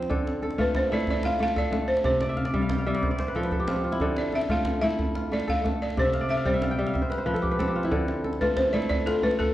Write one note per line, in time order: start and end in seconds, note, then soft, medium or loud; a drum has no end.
0.00 0.14 F3 medium
0.00 1.58 C4 medium
0.00 0.63 D4 medium
0.00 0.80 C5 medium
0.00 djembe slap medium
0.09 2.10 D3 medium
0.09 0.42 A4 medium
0.09 djembe tone medium
0.09 djembe bass medium
0.27 djembe slap medium
0.42 1.56 A4 medium
0.42 djembe tone medium
0.51 djembe slap medium
0.58 0.92 A3 medium
0.58 1.24 F4 medium
0.58 0.75 B4 medium
0.58 djembe slap soft
0.58 djembe bass medium
0.75 0.92 C5 medium
0.75 djembe slap medium
0.75 djembe tone medium
0.92 1.40 A3 medium
0.92 2.43 E4 medium
0.92 1.09 D5 loud
1.00 djembe slap medium
1.07 1.26 D5 loud
1.07 djembe tone medium
1.07 djembe bass medium
1.15 djembe slap soft
1.23 2.35 F4 medium
1.23 1.41 F5 medium
1.23 djembe slap medium
1.39 1.72 A3 medium
1.39 1.58 F5 loud
1.39 djembe tone medium
1.48 djembe slap medium
1.56 2.88 A4 medium
1.56 1.87 D5 medium
1.56 djembe slap soft
1.56 djembe bass medium
1.65 djembe slap soft
1.72 3.72 A3 medium
1.72 djembe slap medium
1.72 djembe tone medium
1.88 2.03 C5 medium
1.97 djembe slap medium
2.04 3.08 C3 medium
2.04 2.39 C5 medium
2.04 djembe tone medium
2.04 djembe bass medium
2.21 2.45 D5 medium
2.21 djembe slap medium
2.29 2.53 E5 medium
2.37 2.60 F5 medium
2.37 djembe tone medium
2.45 2.95 D5 medium
2.45 djembe slap medium
2.54 2.85 G3 medium
2.54 2.84 E5 medium
2.54 djembe bass medium
2.62 2.78 F5 medium
2.62 djembe slap soft
2.70 3.63 G5 medium
2.70 djembe slap medium
2.70 djembe tone medium
2.78 3.78 F5 medium
2.87 3.08 G3 medium
2.87 3.41 E5 medium
2.95 3.10 D5 medium
2.95 djembe slap medium
3.03 3.19 C5 medium
3.03 djembe tone medium
3.03 djembe bass medium
3.11 4.22 D5 medium
3.18 3.50 C5 medium
3.18 djembe slap medium
3.28 3.44 B4 medium
3.28 djembe slap soft
3.35 4.05 F3 medium
3.35 3.51 A4 medium
3.35 djembe tone medium
3.43 3.74 B4 medium
3.43 djembe slap soft
3.51 4.01 A4 medium
3.51 djembe slap soft
3.51 djembe bass medium
3.59 3.75 G4 medium
3.67 5.48 C4 medium
3.67 3.84 F4 medium
3.67 djembe slap medium
3.67 djembe tone medium
3.76 5.17 G4 medium
3.76 djembe slap soft
3.84 4.49 F4 medium
3.92 4.56 E4 medium
3.92 djembe slap medium
4.00 6.01 D3 medium
4.00 4.33 A4 medium
4.00 djembe tone medium
4.00 djembe bass medium
4.17 4.33 D5 medium
4.17 djembe slap medium
4.33 5.47 A4 medium
4.33 4.50 E5 loud
4.33 djembe tone medium
4.42 djembe slap soft
4.49 4.82 A3 medium
4.49 5.15 F4 medium
4.49 4.84 F5 medium
4.49 djembe slap soft
4.49 djembe bass medium
4.65 djembe slap medium
4.65 djembe tone medium
4.82 5.31 A3 medium
4.82 6.20 E4 medium
4.82 5.27 E5 loud
4.90 djembe slap soft
4.99 djembe tone medium
4.99 djembe bass medium
5.07 djembe slap soft
5.15 6.11 F4 medium
5.15 djembe slap medium
5.31 5.63 A3 medium
5.31 5.47 D5 medium
5.31 djembe tone medium
5.39 djembe slap soft
5.47 6.79 A4 medium
5.47 5.82 F5 medium
5.47 djembe slap soft
5.47 djembe bass medium
5.57 djembe slap soft
5.64 7.64 A3 medium
5.64 djembe slap medium
5.64 djembe tone medium
5.82 5.96 D5 medium
5.90 djembe slap medium
5.97 6.99 C3 medium
5.97 6.31 C5 medium
5.97 djembe tone medium
5.97 djembe bass medium
6.05 6.28 E5 medium
6.13 6.35 F5 medium
6.13 djembe slap medium
6.21 7.31 D5 medium
6.29 6.54 E5 medium
6.29 6.37 E5 medium
6.29 djembe tone medium
6.37 6.60 F5 medium
6.46 6.78 G3 medium
6.46 7.39 C5 medium
6.46 6.71 G5 medium
6.46 djembe slap soft
6.46 djembe bass medium
6.54 6.79 E5 medium
6.62 6.85 F5 medium
6.62 djembe slap medium
6.62 djembe tone medium
6.71 7.64 G5 medium
6.79 6.99 G3 medium
6.79 6.93 E5 medium
6.87 7.90 F5 medium
6.87 djembe slap medium
6.94 7.32 E5 medium
6.94 djembe tone medium
6.94 djembe bass medium
7.02 7.18 C5 medium
7.02 djembe slap soft
7.10 7.25 B4 medium
7.10 djembe slap medium
7.18 7.57 C5 medium
7.26 7.97 F3 medium
7.26 7.51 B4 medium
7.26 djembe tone medium
7.34 7.59 A4 medium
7.34 djembe slap medium
7.42 7.67 G4 medium
7.42 djembe slap soft
7.42 djembe bass medium
7.51 8.74 B4 medium
7.51 djembe slap soft
7.59 9.39 C4 medium
7.59 7.91 A4 medium
7.59 djembe slap medium
7.59 djembe tone medium
7.68 9.09 G4 medium
7.75 8.41 F4 medium
7.83 8.48 E4 medium
7.83 djembe slap soft
7.91 9.54 D3 medium
7.91 8.24 A4 medium
7.91 djembe tone medium
7.91 djembe bass medium
8.08 djembe slap medium
8.24 9.39 A4 medium
8.24 djembe tone medium
8.33 djembe slap medium
8.41 8.73 A3 medium
8.41 9.06 F4 medium
8.41 8.58 B4 medium
8.41 djembe slap soft
8.41 djembe bass medium
8.57 8.74 C5 medium
8.57 djembe slap medium
8.57 djembe tone medium
8.73 9.23 A3 medium
8.73 9.54 E4 medium
8.73 8.88 D5 medium
8.82 djembe slap medium
8.89 9.06 D5 loud
8.89 djembe tone medium
8.89 djembe bass medium
8.99 djembe slap soft
9.06 9.54 F4 medium
9.06 9.21 A4 medium
9.06 djembe slap medium
9.22 9.54 A3 medium
9.22 9.39 B4 medium
9.22 djembe tone medium
9.31 djembe slap medium
9.39 9.54 A4 medium
9.39 djembe slap soft
9.39 djembe bass medium